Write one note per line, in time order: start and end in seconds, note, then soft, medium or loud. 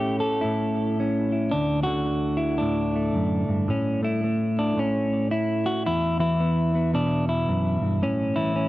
0.00 0.43 A2 medium
0.00 1.86 A3 medium
0.00 0.99 C#4 soft
0.00 0.21 E4 medium
0.00 0.20 G4 medium
0.20 0.96 A4 medium
0.41 1.52 A2 medium
0.41 1.30 E4 medium
1.00 1.54 C#4 soft
1.32 1.50 E4 soft
1.51 3.15 D2 medium
1.51 1.83 D4 medium
1.83 3.70 D3 medium
1.83 2.58 F#4 loud
2.37 2.93 E4 medium
2.58 3.67 A2 medium
2.58 3.68 D4 medium
2.96 3.70 A3 soft
3.15 3.48 F#2 medium
3.48 3.69 G2 medium
3.68 4.76 A2 medium
3.68 4.03 C#4 medium
4.03 4.23 A3 medium
4.03 4.78 E4 medium
4.24 5.84 A3 soft
4.59 4.79 D4 medium
4.77 5.86 A2 medium
4.77 5.31 C#4 medium
5.31 5.85 E4 medium
5.66 5.86 F#4 loud
5.86 7.49 E2 medium
5.86 6.19 E4 loud
6.20 8.00 E3 medium
6.20 6.95 E4 loud
6.40 6.74 B3 soft
6.75 8.01 B3 soft
6.94 8.00 B2 medium
6.94 7.28 D4 medium
7.29 8.03 E4 medium
7.49 7.81 F#2 medium
7.82 8.03 G2 medium
8.03 8.69 A2 medium
8.03 8.54 C#4 loud
8.36 8.69 E3 medium
8.36 8.69 E4 medium
8.56 8.69 C#4 medium